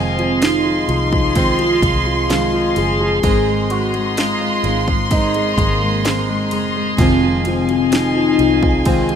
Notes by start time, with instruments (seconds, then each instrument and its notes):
Already playing: fingered electric bass F1, steel-string acoustic guitar F2 C3 D#3 G#3 C4 F4, grand piano F3, soft synth lead C4, tonewheel organ G#4 D#5 F5 C6, violin section G#5
0.19 grand piano F3, ride
0.42 grand piano F3, soft synth lead D#4, violin section C6, snare, ride
0.66 grand piano F3
0.88 fingered electric bass C2, grand piano F3, soft synth lead D#4, ride
1.12 grand piano F3, kick
1.35 steel-string acoustic guitar D#3 G#3 C4 F4, grand piano C4, soft synth lead F4, kick, ride
1.59 grand piano F3, ride
1.82 fingered electric bass C2, grand piano F3, kick, ride
2.06 grand piano F3
2.29 steel-string acoustic guitar D#3 G#3 C4 F4, grand piano F3, soft synth lead F4, snare, ride
2.53 grand piano F3
2.76 fingered electric bass F#1, grand piano F3, soft synth lead G#4, ride
3.01 grand piano F3
3.23 fingered electric bass G#1, steel-string acoustic guitar G#3 C4 D#4 A#4, grand piano G#3, soft synth lead G#4, tonewheel organ D#5 A#5, violin section C6, kick, ride
3.48 grand piano G#3
3.70 grand piano G#3, soft synth lead F#4, ride
3.94 grand piano G#3, ride
4.17 grand piano G#3, soft synth lead F4, snare, ride
4.41 grand piano G#3
4.63 fingered electric bass G#1, grand piano G#3, steel-string acoustic guitar C4 D#4 A#4, ride
4.88 grand piano G#3, kick
5.10 steel-string acoustic guitar G#3 C4 D#4 A#4, grand piano D#4, soft synth lead D#4, kick, ride
5.34 grand piano G#3, ride
5.58 fingered electric bass G#1, grand piano G#3, soft synth lead A#3, kick, ride
5.82 grand piano G#3
6.04 steel-string acoustic guitar G#3 C4 D#4 A#4, grand piano G#3, snare, ride
6.29 grand piano G#3
6.51 fingered electric bass F#1, grand piano G#3, ride
6.76 grand piano G#3
6.97 fingered electric bass F1, steel-string acoustic guitar F2 C3 D#3 G#3 C4, grand piano F3, tonewheel organ F5, violin section G#5, kick, ride
7.01 soft synth lead C4, steel-string acoustic guitar F4
7.23 grand piano F3
7.45 grand piano F3, soft synth lead C4, ride
7.69 grand piano F3, ride
7.92 grand piano F3, soft synth lead D#4, snare, ride
8.16 grand piano F3
8.39 fingered electric bass C2, grand piano F3, ride
8.63 grand piano F3, kick
8.85 steel-string acoustic guitar D#3 G#3 C4 F4, grand piano C4, soft synth lead F4, kick, ride
9.09 grand piano F3, ride